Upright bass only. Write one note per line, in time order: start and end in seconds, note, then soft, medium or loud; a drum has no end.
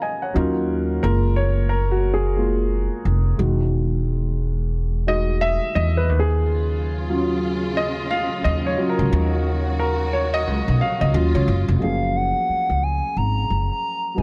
0.36 0.98 D#2 medium
1.04 2.87 F#1 loud
3.05 3.35 F1 medium
3.39 5.57 E1 loud
5.76 6.09 E2 medium
6.09 8.27 D#2 medium
8.45 8.75 D#2 medium
8.99 9.10 C#2 medium
9.13 10.47 D#2 loud
10.47 10.65 C#2 loud
10.68 10.79 B1 medium
11.01 11.12 C#2 medium
11.14 11.32 D#2 loud
11.35 11.46 C#2 loud
11.48 11.66 F#1 medium
11.68 11.80 F1 loud
11.82 12.31 F#1 medium
12.49 muted upright bass stroke soft
12.70 13.00 C#2 medium
13.17 13.47 G#1 medium
13.50 13.68 F#1 medium
14.18 14.22 E1 medium